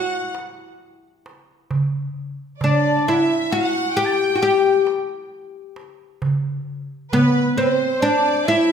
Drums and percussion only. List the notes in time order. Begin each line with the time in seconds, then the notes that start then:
0.35 darbuka tek
1.26 darbuka tek
1.71 darbuka dum
2.61 darbuka dum
3.07 darbuka ka
3.51 darbuka tek
4.87 darbuka tek
5.76 darbuka tek
6.22 darbuka dum
7.13 darbuka dum
7.58 darbuka ka
8.03 darbuka tek